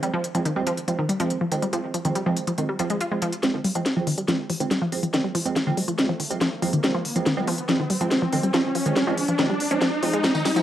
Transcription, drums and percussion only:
0.03 closed hi-hat
0.24 closed hi-hat
0.35 closed hi-hat
0.45 closed hi-hat
0.67 closed hi-hat
0.77 closed hi-hat
0.88 closed hi-hat
1.09 closed hi-hat
1.20 closed hi-hat
1.30 closed hi-hat
1.52 closed hi-hat
1.62 closed hi-hat
1.73 closed hi-hat
1.94 closed hi-hat
2.05 closed hi-hat
2.15 closed hi-hat
2.37 closed hi-hat
2.47 closed hi-hat
2.58 closed hi-hat
2.79 closed hi-hat
2.90 closed hi-hat
3.01 closed hi-hat
3.22 closed hi-hat
3.33 closed hi-hat
3.43 snare, closed hi-hat
3.65 open hi-hat
3.75 closed hi-hat
3.86 snare, closed hi-hat
4.07 open hi-hat
4.18 closed hi-hat
4.28 snare, closed hi-hat
4.50 open hi-hat
4.60 closed hi-hat
4.71 snare, closed hi-hat
4.92 open hi-hat
5.03 closed hi-hat
5.14 snare, closed hi-hat
5.35 open hi-hat
5.46 closed hi-hat
5.56 snare, closed hi-hat
5.77 open hi-hat
5.88 closed hi-hat
5.98 snare, closed hi-hat
6.20 open hi-hat
6.31 closed hi-hat
6.41 snare, closed hi-hat
6.62 open hi-hat
6.73 closed hi-hat
6.84 snare, closed hi-hat
7.05 open hi-hat
7.16 closed hi-hat
7.26 snare, closed hi-hat
7.47 open hi-hat
7.58 closed hi-hat
7.69 snare, closed hi-hat
7.90 open hi-hat
8.01 closed hi-hat
8.11 snare, closed hi-hat
8.33 open hi-hat
8.43 closed hi-hat
8.54 snare, closed hi-hat
8.75 open hi-hat
8.86 closed hi-hat
8.96 snare, closed hi-hat
9.17 open hi-hat
9.28 closed hi-hat
9.39 snare, closed hi-hat
9.60 open hi-hat
9.71 closed hi-hat
9.81 snare, closed hi-hat
10.03 open hi-hat
10.13 closed hi-hat
10.24 snare, closed hi-hat, tambourine
10.35 tambourine
10.45 snare, open hi-hat, tambourine
10.56 closed hi-hat, tambourine

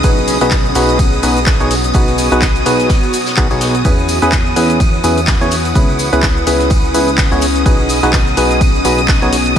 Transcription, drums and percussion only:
0.03 kick, closed hi-hat, ride, tambourine, shaker
0.18 shaker
0.28 open hi-hat, tambourine, shaker
0.41 closed hi-hat, tambourine, shaker
0.51 kick, snare, clap, closed hi-hat, ride, tambourine, shaker
0.65 shaker
0.75 open hi-hat, tambourine, shaker
0.89 closed hi-hat, tambourine, shaker
0.99 kick, closed hi-hat, ride, tambourine, shaker
1.13 shaker
1.23 open hi-hat, tambourine, shaker
1.37 closed hi-hat, tambourine, shaker
1.46 kick, snare, clap, closed hi-hat, ride, tambourine, shaker
1.60 closed hi-hat, shaker
1.71 open hi-hat, tambourine, shaker
1.84 closed hi-hat, tambourine, shaker
1.94 kick, closed hi-hat, ride, tambourine, shaker
2.08 closed hi-hat, shaker
2.18 open hi-hat, tambourine, shaker
2.31 closed hi-hat, tambourine, shaker
2.42 kick, snare, clap, closed hi-hat, ride, tambourine, shaker
2.56 closed hi-hat, shaker
2.66 open hi-hat, tambourine, shaker
2.79 snare, closed hi-hat, tambourine, shaker
2.89 kick, snare, closed hi-hat, ride, tambourine, shaker
3.03 closed hi-hat, shaker
3.13 open hi-hat, tambourine, shaker
3.26 snare, closed hi-hat, tambourine, shaker
3.37 kick, clap, closed hi-hat, ride, shaker
3.51 closed hi-hat, tambourine, shaker
3.61 snare, open hi-hat, tambourine, shaker
3.75 closed hi-hat, tambourine, shaker
3.85 kick, closed hi-hat, ride, tambourine, shaker
3.99 shaker
4.08 open hi-hat, tambourine, shaker
4.22 closed hi-hat, tambourine, shaker
4.32 kick, snare, clap, closed hi-hat, ride, tambourine, shaker
4.46 shaker
4.56 open hi-hat, tambourine, shaker
4.70 closed hi-hat, tambourine, shaker
4.80 kick, closed hi-hat, ride, tambourine, shaker
4.94 shaker
5.04 open hi-hat, tambourine, shaker
5.18 closed hi-hat, tambourine, shaker
5.27 kick, snare, clap, closed hi-hat, ride, tambourine, shaker
5.41 closed hi-hat, shaker
5.51 open hi-hat, tambourine, shaker
5.65 closed hi-hat, tambourine, shaker
5.75 kick, closed hi-hat, ride, tambourine, shaker
5.90 shaker
5.99 open hi-hat, tambourine, shaker
6.13 closed hi-hat, tambourine, shaker
6.23 kick, snare, clap, closed hi-hat, ride, tambourine, shaker
6.37 shaker
6.47 open hi-hat, tambourine, shaker
6.60 snare, closed hi-hat, tambourine, shaker
6.70 kick, closed hi-hat, ride, tambourine, shaker
6.85 shaker
6.94 open hi-hat, tambourine, shaker
7.08 closed hi-hat, tambourine, shaker
7.18 kick, snare, clap, closed hi-hat, open hi-hat, ride, shaker
7.32 closed hi-hat, shaker
7.41 open hi-hat, tambourine, shaker
7.55 closed hi-hat, tambourine, shaker
7.66 kick, closed hi-hat, ride, tambourine, shaker
7.80 shaker
7.89 open hi-hat, tambourine, shaker
8.03 closed hi-hat, tambourine, shaker
8.13 kick, snare, clap, closed hi-hat, ride, tambourine, shaker
8.27 shaker
8.37 open hi-hat, tambourine, shaker
8.51 closed hi-hat, tambourine, shaker
8.61 kick, closed hi-hat, ride, tambourine, shaker
8.75 shaker
8.85 open hi-hat, tambourine, shaker
8.98 closed hi-hat, tambourine, shaker
9.08 kick, snare, clap, closed hi-hat, ride, tambourine, shaker
9.22 closed hi-hat, shaker
9.32 open hi-hat, tambourine, shaker
9.45 closed hi-hat, tambourine, shaker

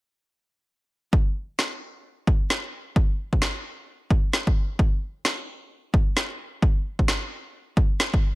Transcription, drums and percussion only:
1.13 kick
1.59 snare
2.27 kick
2.50 snare
2.96 kick
3.33 kick
3.42 snare
4.10 kick
4.33 snare
4.47 kick
4.79 kick
5.25 snare
5.94 kick
6.17 snare
6.62 kick
6.99 kick
7.08 snare
7.77 kick
8.00 snare
8.14 kick

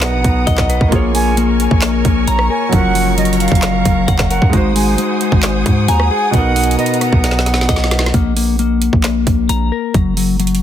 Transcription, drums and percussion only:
0.01 snare, clap, closed hi-hat
0.24 kick, closed hi-hat
0.47 kick, closed hi-hat
0.58 kick, cross-stick, snare, clap
0.70 closed hi-hat
0.81 kick
0.92 kick, closed hi-hat
1.15 open hi-hat
1.37 closed hi-hat
1.60 closed hi-hat
1.71 kick
1.82 snare, clap, closed hi-hat
2.05 kick, closed hi-hat
2.27 closed hi-hat
2.39 cross-stick
2.73 kick, closed hi-hat
2.95 open hi-hat
3.18 closed hi-hat
3.25 closed hi-hat
3.33 closed hi-hat
3.40 closed hi-hat
3.48 kick, closed hi-hat
3.55 closed hi-hat
3.62 snare, clap, closed hi-hat
3.85 kick, closed hi-hat
4.08 kick, closed hi-hat
4.19 kick, cross-stick, snare, clap
4.31 closed hi-hat
4.42 kick
4.53 kick, closed hi-hat
4.76 open hi-hat
4.98 closed hi-hat
5.21 closed hi-hat
5.32 kick
5.43 snare, clap, closed hi-hat
5.66 kick, closed hi-hat
5.88 closed hi-hat
6.00 cross-stick
6.34 kick, closed hi-hat
6.56 closed hi-hat, open hi-hat
6.64 closed hi-hat
6.71 closed hi-hat
6.79 closed hi-hat
6.86 closed hi-hat
6.94 closed hi-hat
7.01 cross-stick, closed hi-hat
7.13 kick
7.24 snare, closed hi-hat
7.31 snare
7.39 snare
7.46 snare, closed hi-hat
7.54 snare
7.61 snare
7.69 kick, snare, closed hi-hat
7.76 snare
7.84 snare
7.91 snare, closed hi-hat
7.99 snare
8.06 snare
8.14 kick, closed hi-hat
8.37 open hi-hat
8.59 closed hi-hat
8.82 closed hi-hat
8.93 kick
9.04 snare, clap, closed hi-hat
9.27 kick, closed hi-hat
9.49 closed hi-hat
9.94 kick, closed hi-hat
10.17 open hi-hat
10.40 closed hi-hat
10.47 closed hi-hat
10.55 closed hi-hat

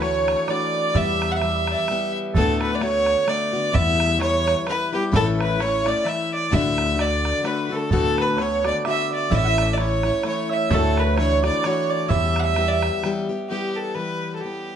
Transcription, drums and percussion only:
0.02 bodhran
0.28 bodhran
0.48 bodhran
0.95 bodhran
1.22 bodhran
1.41 bodhran
1.67 bodhran
1.88 bodhran
2.35 bodhran
2.61 bodhran
2.81 bodhran
3.06 bodhran
3.28 bodhran
3.75 bodhran
4.00 bodhran
4.21 bodhran
4.48 bodhran
4.67 bodhran
5.13 bodhran
5.41 bodhran
5.60 bodhran
5.86 bodhran
6.06 bodhran
6.53 bodhran
6.78 bodhran
6.99 bodhran
7.25 bodhran
7.45 bodhran
7.91 bodhran
8.18 bodhran
8.38 bodhran
8.65 bodhran
8.85 bodhran
9.32 bodhran
9.58 bodhran
9.78 bodhran
10.03 bodhran
10.23 bodhran
10.71 bodhran
10.97 bodhran
11.18 bodhran
11.44 bodhran
11.64 bodhran
12.10 bodhran
12.36 bodhran
12.56 bodhran
12.83 bodhran
13.04 bodhran

